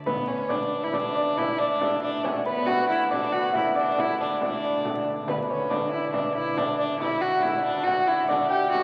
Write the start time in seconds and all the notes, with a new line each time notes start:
0.06 D2 B3 B4, frame drum
0.28 C#4 C#5
0.49 D4 D5, frame drum
0.82 E4 E5
0.92 D4 D5, frame drum
1.15 D5, frame drum
1.37 E4 E5, frame drum
1.58 D4 D5
1.81 E5, frame drum
2.02 D4 D5
2.24 C#4 C#5, frame drum
2.45 B3 B4, frame drum
2.66 F#4 F#5, frame drum
2.88 E4
3.09 D4 D5, frame drum
3.32 F#4 F#5
3.52 E4 E5, frame drum
3.75 D4 D5, frame drum
3.97 E4 E5, frame drum
4.20 D4 D5
4.42 D4 D5, frame drum
4.65 frame drum
4.85 frame drum
5.27 D2 B3 B4, frame drum
5.48 C#4 C#5
5.70 D4 D5, frame drum
5.91 E4 E5
6.13 D4 D5, frame drum
6.35 E4 E5, frame drum
6.57 D4 D5, frame drum
6.78 D4 D5
6.99 E4 E5, frame drum
7.21 F#4 F#5
7.42 E4 E5, frame drum
7.58 E5
7.65 D4, frame drum
7.74 E5
7.83 F#4 F#5
7.88 frame drum
8.07 E4 E5
8.28 D4 D5, frame drum
8.49 G4 G5
8.71 F#4 F#5
8.75 frame drum